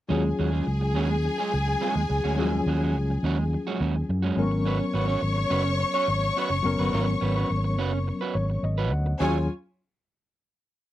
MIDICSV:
0, 0, Header, 1, 6, 480
1, 0, Start_track
1, 0, Key_signature, -6, "minor"
1, 0, Tempo, 569260
1, 81, Time_signature, 4, 2, 24, 8
1, 9209, End_track
2, 0, Start_track
2, 0, Title_t, "String section"
2, 0, Program_c, 0, 48
2, 86, Note_on_c, 0, 80, 103
2, 88, Note_on_c, 0, 68, 91
2, 3413, Note_off_c, 0, 80, 0
2, 3414, Note_off_c, 0, 68, 0
2, 3691, Note_on_c, 0, 73, 103
2, 3693, Note_on_c, 0, 85, 115
2, 7249, Note_off_c, 0, 73, 0
2, 7250, Note_off_c, 0, 85, 0
2, 7758, Note_on_c, 0, 73, 75
2, 7760, Note_on_c, 0, 65, 82
2, 7766, Note_on_c, 0, 80, 91
2, 7982, Note_off_c, 0, 73, 0
2, 7983, Note_off_c, 0, 65, 0
2, 7986, Note_off_c, 0, 80, 0
2, 9209, End_track
3, 0, Start_track
3, 0, Title_t, "Clean electric guitar"
3, 0, Program_c, 1, 27
3, 76, Note_on_c, 1, 56, 79
3, 87, Note_on_c, 1, 61, 89
3, 91, Note_on_c, 1, 66, 78
3, 197, Note_off_c, 1, 66, 0
3, 205, Note_off_c, 1, 61, 0
3, 243, Note_off_c, 1, 56, 0
3, 326, Note_on_c, 1, 56, 60
3, 333, Note_on_c, 1, 61, 67
3, 341, Note_on_c, 1, 66, 68
3, 432, Note_off_c, 1, 66, 0
3, 435, Note_off_c, 1, 61, 0
3, 435, Note_on_c, 1, 68, 53
3, 439, Note_off_c, 1, 56, 0
3, 446, Note_on_c, 1, 61, 52
3, 450, Note_on_c, 1, 56, 43
3, 548, Note_off_c, 1, 56, 0
3, 554, Note_off_c, 1, 61, 0
3, 562, Note_off_c, 1, 68, 0
3, 800, Note_on_c, 1, 56, 82
3, 811, Note_on_c, 1, 61, 91
3, 815, Note_on_c, 1, 66, 83
3, 919, Note_off_c, 1, 66, 0
3, 926, Note_off_c, 1, 61, 0
3, 966, Note_off_c, 1, 56, 0
3, 1166, Note_on_c, 1, 68, 90
3, 1178, Note_on_c, 1, 61, 68
3, 1184, Note_on_c, 1, 56, 67
3, 1280, Note_off_c, 1, 56, 0
3, 1287, Note_off_c, 1, 61, 0
3, 1297, Note_off_c, 1, 68, 0
3, 1526, Note_on_c, 1, 56, 87
3, 1533, Note_on_c, 1, 61, 83
3, 1537, Note_on_c, 1, 66, 88
3, 1642, Note_off_c, 1, 66, 0
3, 1649, Note_off_c, 1, 61, 0
3, 1693, Note_off_c, 1, 56, 0
3, 1888, Note_on_c, 1, 66, 62
3, 1895, Note_on_c, 1, 61, 60
3, 1907, Note_on_c, 1, 56, 46
3, 1994, Note_off_c, 1, 56, 0
3, 2001, Note_off_c, 1, 61, 0
3, 2005, Note_on_c, 1, 56, 74
3, 2011, Note_off_c, 1, 66, 0
3, 2011, Note_on_c, 1, 61, 71
3, 2021, Note_on_c, 1, 66, 80
3, 2127, Note_off_c, 1, 66, 0
3, 2136, Note_off_c, 1, 61, 0
3, 2169, Note_off_c, 1, 56, 0
3, 2256, Note_on_c, 1, 56, 57
3, 2262, Note_on_c, 1, 61, 61
3, 2268, Note_on_c, 1, 66, 72
3, 2374, Note_off_c, 1, 66, 0
3, 2379, Note_off_c, 1, 56, 0
3, 2379, Note_off_c, 1, 61, 0
3, 2384, Note_on_c, 1, 66, 53
3, 2389, Note_on_c, 1, 61, 50
3, 2396, Note_on_c, 1, 56, 43
3, 2493, Note_off_c, 1, 56, 0
3, 2499, Note_off_c, 1, 61, 0
3, 2503, Note_off_c, 1, 66, 0
3, 2732, Note_on_c, 1, 56, 85
3, 2736, Note_on_c, 1, 61, 85
3, 2746, Note_on_c, 1, 66, 101
3, 2848, Note_off_c, 1, 66, 0
3, 2854, Note_off_c, 1, 61, 0
3, 2893, Note_off_c, 1, 56, 0
3, 3093, Note_on_c, 1, 66, 90
3, 3100, Note_on_c, 1, 61, 76
3, 3109, Note_on_c, 1, 56, 66
3, 3198, Note_off_c, 1, 56, 0
3, 3205, Note_off_c, 1, 61, 0
3, 3208, Note_on_c, 1, 56, 68
3, 3214, Note_off_c, 1, 66, 0
3, 3215, Note_on_c, 1, 61, 72
3, 3224, Note_on_c, 1, 66, 71
3, 3328, Note_off_c, 1, 66, 0
3, 3335, Note_off_c, 1, 56, 0
3, 3338, Note_off_c, 1, 61, 0
3, 3562, Note_on_c, 1, 66, 83
3, 3573, Note_on_c, 1, 61, 73
3, 3579, Note_on_c, 1, 56, 71
3, 3677, Note_off_c, 1, 61, 0
3, 3682, Note_off_c, 1, 66, 0
3, 3736, Note_off_c, 1, 56, 0
3, 3925, Note_on_c, 1, 61, 73
3, 3932, Note_on_c, 1, 66, 90
3, 3941, Note_on_c, 1, 71, 88
3, 4036, Note_off_c, 1, 71, 0
3, 4046, Note_off_c, 1, 66, 0
3, 4089, Note_off_c, 1, 61, 0
3, 4162, Note_on_c, 1, 61, 59
3, 4171, Note_on_c, 1, 66, 63
3, 4174, Note_on_c, 1, 71, 62
3, 4278, Note_off_c, 1, 71, 0
3, 4279, Note_off_c, 1, 66, 0
3, 4282, Note_on_c, 1, 73, 66
3, 4284, Note_off_c, 1, 61, 0
3, 4289, Note_on_c, 1, 66, 62
3, 4294, Note_on_c, 1, 61, 52
3, 4394, Note_off_c, 1, 61, 0
3, 4398, Note_off_c, 1, 66, 0
3, 4405, Note_off_c, 1, 73, 0
3, 4640, Note_on_c, 1, 61, 99
3, 4646, Note_on_c, 1, 66, 88
3, 4651, Note_on_c, 1, 71, 84
3, 4752, Note_off_c, 1, 71, 0
3, 4760, Note_off_c, 1, 66, 0
3, 4806, Note_off_c, 1, 61, 0
3, 5008, Note_on_c, 1, 73, 97
3, 5016, Note_on_c, 1, 66, 79
3, 5023, Note_on_c, 1, 61, 78
3, 5125, Note_off_c, 1, 61, 0
3, 5130, Note_off_c, 1, 66, 0
3, 5142, Note_off_c, 1, 73, 0
3, 5372, Note_on_c, 1, 61, 73
3, 5377, Note_on_c, 1, 66, 91
3, 5387, Note_on_c, 1, 71, 80
3, 5480, Note_off_c, 1, 71, 0
3, 5490, Note_off_c, 1, 66, 0
3, 5531, Note_off_c, 1, 61, 0
3, 5726, Note_on_c, 1, 71, 61
3, 5738, Note_on_c, 1, 66, 55
3, 5743, Note_on_c, 1, 61, 48
3, 5833, Note_off_c, 1, 61, 0
3, 5843, Note_off_c, 1, 66, 0
3, 5844, Note_on_c, 1, 61, 80
3, 5849, Note_off_c, 1, 71, 0
3, 5853, Note_on_c, 1, 66, 81
3, 5859, Note_on_c, 1, 71, 85
3, 5956, Note_off_c, 1, 71, 0
3, 5960, Note_off_c, 1, 66, 0
3, 6010, Note_off_c, 1, 61, 0
3, 6081, Note_on_c, 1, 61, 65
3, 6089, Note_on_c, 1, 66, 61
3, 6094, Note_on_c, 1, 71, 63
3, 6195, Note_off_c, 1, 71, 0
3, 6205, Note_on_c, 1, 71, 60
3, 6208, Note_off_c, 1, 66, 0
3, 6209, Note_off_c, 1, 61, 0
3, 6218, Note_on_c, 1, 66, 53
3, 6219, Note_on_c, 1, 61, 47
3, 6318, Note_off_c, 1, 61, 0
3, 6321, Note_off_c, 1, 66, 0
3, 6329, Note_off_c, 1, 71, 0
3, 6564, Note_on_c, 1, 61, 83
3, 6569, Note_on_c, 1, 66, 83
3, 6579, Note_on_c, 1, 71, 87
3, 6678, Note_off_c, 1, 71, 0
3, 6690, Note_off_c, 1, 66, 0
3, 6727, Note_off_c, 1, 61, 0
3, 6922, Note_on_c, 1, 71, 78
3, 6930, Note_on_c, 1, 66, 73
3, 6936, Note_on_c, 1, 61, 64
3, 7041, Note_off_c, 1, 61, 0
3, 7044, Note_off_c, 1, 66, 0
3, 7049, Note_off_c, 1, 71, 0
3, 7401, Note_on_c, 1, 71, 91
3, 7410, Note_on_c, 1, 66, 78
3, 7413, Note_on_c, 1, 61, 63
3, 7516, Note_off_c, 1, 61, 0
3, 7519, Note_off_c, 1, 66, 0
3, 7526, Note_off_c, 1, 71, 0
3, 7757, Note_on_c, 1, 66, 75
3, 7763, Note_on_c, 1, 68, 75
3, 7771, Note_on_c, 1, 73, 75
3, 7902, Note_off_c, 1, 66, 0
3, 7905, Note_off_c, 1, 68, 0
3, 7909, Note_off_c, 1, 73, 0
3, 9209, End_track
4, 0, Start_track
4, 0, Title_t, "Tine electric piano"
4, 0, Program_c, 2, 4
4, 72, Note_on_c, 2, 54, 78
4, 80, Note_on_c, 2, 61, 67
4, 89, Note_on_c, 2, 65, 64
4, 99, Note_on_c, 2, 68, 78
4, 237, Control_c, 2, 64, 127
4, 1966, Note_off_c, 2, 54, 0
4, 1970, Note_off_c, 2, 61, 0
4, 1975, Note_off_c, 2, 65, 0
4, 1980, Note_off_c, 2, 68, 0
4, 1985, Note_on_c, 2, 53, 57
4, 2000, Note_on_c, 2, 61, 73
4, 2008, Note_on_c, 2, 65, 68
4, 2015, Note_on_c, 2, 68, 76
4, 2042, Note_on_c, 2, 54, 73
4, 2049, Note_off_c, 2, 53, 0
4, 3648, Note_off_c, 2, 61, 0
4, 3652, Note_off_c, 2, 65, 0
4, 3656, Note_off_c, 2, 68, 0
4, 3661, Note_off_c, 2, 54, 0
4, 3671, Note_on_c, 2, 54, 76
4, 3681, Note_on_c, 2, 59, 69
4, 3690, Note_on_c, 2, 61, 69
4, 3695, Control_c, 2, 64, 0
4, 3700, Note_on_c, 2, 70, 81
4, 3862, Control_c, 2, 64, 127
4, 5561, Note_off_c, 2, 54, 0
4, 5567, Note_off_c, 2, 59, 0
4, 5571, Note_off_c, 2, 61, 0
4, 5576, Note_off_c, 2, 70, 0
4, 5590, Note_on_c, 2, 54, 77
4, 5600, Note_on_c, 2, 59, 75
4, 5607, Note_on_c, 2, 61, 64
4, 5614, Note_on_c, 2, 70, 86
4, 7040, Note_on_c, 2, 73, 65
4, 7263, Note_off_c, 2, 73, 0
4, 7283, Note_on_c, 2, 75, 66
4, 7480, Note_off_c, 2, 54, 0
4, 7485, Note_off_c, 2, 59, 0
4, 7488, Note_off_c, 2, 61, 0
4, 7492, Note_off_c, 2, 70, 0
4, 7505, Note_off_c, 2, 75, 0
4, 7525, Note_on_c, 2, 78, 69
4, 7745, Note_off_c, 2, 78, 0
4, 7761, Note_on_c, 2, 61, 73
4, 7762, Note_on_c, 2, 65, 72
4, 7763, Note_on_c, 2, 68, 77
4, 7765, Note_on_c, 2, 54, 74
4, 7769, Control_c, 2, 64, 0
4, 7983, Note_off_c, 2, 61, 0
4, 7984, Note_off_c, 2, 65, 0
4, 7984, Note_off_c, 2, 68, 0
4, 7985, Note_off_c, 2, 54, 0
4, 9209, End_track
5, 0, Start_track
5, 0, Title_t, "Fingered electric bass"
5, 0, Program_c, 3, 33
5, 85, Note_on_c, 3, 39, 96
5, 263, Note_off_c, 3, 39, 0
5, 331, Note_on_c, 3, 39, 99
5, 507, Note_off_c, 3, 39, 0
5, 565, Note_on_c, 3, 37, 94
5, 803, Note_off_c, 3, 37, 0
5, 803, Note_on_c, 3, 39, 76
5, 1072, Note_off_c, 3, 39, 0
5, 1295, Note_on_c, 3, 37, 82
5, 1470, Note_off_c, 3, 37, 0
5, 1649, Note_on_c, 3, 39, 73
5, 1737, Note_off_c, 3, 39, 0
5, 1771, Note_on_c, 3, 37, 81
5, 1858, Note_off_c, 3, 37, 0
5, 1891, Note_on_c, 3, 38, 74
5, 2016, Note_off_c, 3, 38, 0
5, 2016, Note_on_c, 3, 39, 117
5, 2190, Note_off_c, 3, 39, 0
5, 2246, Note_on_c, 3, 39, 100
5, 2489, Note_off_c, 3, 39, 0
5, 2489, Note_on_c, 3, 37, 75
5, 2666, Note_off_c, 3, 37, 0
5, 2723, Note_on_c, 3, 39, 83
5, 2992, Note_off_c, 3, 39, 0
5, 3209, Note_on_c, 3, 39, 90
5, 3386, Note_off_c, 3, 39, 0
5, 3451, Note_on_c, 3, 42, 89
5, 3627, Note_off_c, 3, 42, 0
5, 3683, Note_on_c, 3, 32, 95
5, 4041, Note_off_c, 3, 32, 0
5, 4165, Note_on_c, 3, 32, 91
5, 4343, Note_off_c, 3, 32, 0
5, 4405, Note_on_c, 3, 32, 84
5, 4583, Note_off_c, 3, 32, 0
5, 4644, Note_on_c, 3, 30, 81
5, 4912, Note_off_c, 3, 30, 0
5, 5126, Note_on_c, 3, 32, 86
5, 5304, Note_off_c, 3, 32, 0
5, 5480, Note_on_c, 3, 30, 66
5, 5570, Note_off_c, 3, 30, 0
5, 5604, Note_on_c, 3, 30, 88
5, 5693, Note_off_c, 3, 30, 0
5, 5726, Note_on_c, 3, 31, 88
5, 5814, Note_off_c, 3, 31, 0
5, 5845, Note_on_c, 3, 32, 115
5, 6022, Note_off_c, 3, 32, 0
5, 6087, Note_on_c, 3, 32, 91
5, 6263, Note_off_c, 3, 32, 0
5, 6327, Note_on_c, 3, 32, 74
5, 6561, Note_off_c, 3, 32, 0
5, 6561, Note_on_c, 3, 30, 77
5, 6829, Note_off_c, 3, 30, 0
5, 7039, Note_on_c, 3, 32, 83
5, 7218, Note_off_c, 3, 32, 0
5, 7276, Note_on_c, 3, 32, 83
5, 7518, Note_off_c, 3, 32, 0
5, 7518, Note_on_c, 3, 38, 91
5, 7698, Note_off_c, 3, 38, 0
5, 7761, Note_on_c, 3, 39, 100
5, 7983, Note_off_c, 3, 39, 0
5, 9209, End_track
6, 0, Start_track
6, 0, Title_t, "Muted clean electric guitar strokes"
6, 208, Note_on_c, 9, 29, 35
6, 292, Note_off_c, 9, 29, 0
6, 558, Note_on_c, 9, 29, 43
6, 643, Note_off_c, 9, 29, 0
6, 684, Note_on_c, 9, 29, 42
6, 768, Note_off_c, 9, 29, 0
6, 929, Note_on_c, 9, 29, 37
6, 1014, Note_off_c, 9, 29, 0
6, 1054, Note_on_c, 9, 29, 34
6, 1139, Note_off_c, 9, 29, 0
6, 1290, Note_on_c, 9, 29, 45
6, 1375, Note_off_c, 9, 29, 0
6, 1414, Note_on_c, 9, 29, 39
6, 1499, Note_off_c, 9, 29, 0
6, 1652, Note_on_c, 9, 29, 43
6, 1736, Note_off_c, 9, 29, 0
6, 1765, Note_on_c, 9, 29, 40
6, 1849, Note_off_c, 9, 29, 0
6, 2137, Note_on_c, 9, 29, 36
6, 2222, Note_off_c, 9, 29, 0
6, 2503, Note_on_c, 9, 29, 41
6, 2587, Note_off_c, 9, 29, 0
6, 2616, Note_on_c, 9, 29, 43
6, 2700, Note_off_c, 9, 29, 0
6, 2858, Note_on_c, 9, 29, 43
6, 2942, Note_off_c, 9, 29, 0
6, 2980, Note_on_c, 9, 29, 37
6, 3064, Note_off_c, 9, 29, 0
6, 3338, Note_on_c, 9, 29, 46
6, 3422, Note_off_c, 9, 29, 0
6, 3455, Note_on_c, 9, 29, 39
6, 3540, Note_off_c, 9, 29, 0
6, 3687, Note_on_c, 9, 29, 42
6, 3772, Note_off_c, 9, 29, 0
6, 3806, Note_on_c, 9, 29, 47
6, 3890, Note_off_c, 9, 29, 0
6, 4046, Note_on_c, 9, 29, 40
6, 4130, Note_off_c, 9, 29, 0
6, 4404, Note_on_c, 9, 29, 35
6, 4488, Note_off_c, 9, 29, 0
6, 4521, Note_on_c, 9, 29, 46
6, 4605, Note_off_c, 9, 29, 0
6, 4762, Note_on_c, 9, 29, 42
6, 4847, Note_off_c, 9, 29, 0
6, 4889, Note_on_c, 9, 29, 42
6, 4973, Note_off_c, 9, 29, 0
6, 5135, Note_on_c, 9, 29, 37
6, 5220, Note_off_c, 9, 29, 0
6, 5259, Note_on_c, 9, 29, 33
6, 5344, Note_off_c, 9, 29, 0
6, 5490, Note_on_c, 9, 29, 56
6, 5575, Note_off_c, 9, 29, 0
6, 5616, Note_on_c, 9, 29, 42
6, 5700, Note_off_c, 9, 29, 0
6, 5966, Note_on_c, 9, 29, 47
6, 6050, Note_off_c, 9, 29, 0
6, 6328, Note_on_c, 9, 29, 35
6, 6413, Note_off_c, 9, 29, 0
6, 6444, Note_on_c, 9, 29, 54
6, 6529, Note_off_c, 9, 29, 0
6, 6689, Note_on_c, 9, 29, 38
6, 6773, Note_off_c, 9, 29, 0
6, 6808, Note_on_c, 9, 29, 39
6, 6892, Note_off_c, 9, 29, 0
6, 7051, Note_on_c, 9, 29, 43
6, 7136, Note_off_c, 9, 29, 0
6, 7165, Note_on_c, 9, 29, 32
6, 7249, Note_off_c, 9, 29, 0
6, 7286, Note_on_c, 9, 29, 39
6, 7370, Note_off_c, 9, 29, 0
6, 7526, Note_on_c, 9, 29, 37
6, 7610, Note_off_c, 9, 29, 0
6, 7641, Note_on_c, 9, 29, 44
6, 7725, Note_off_c, 9, 29, 0
6, 9209, End_track
0, 0, End_of_file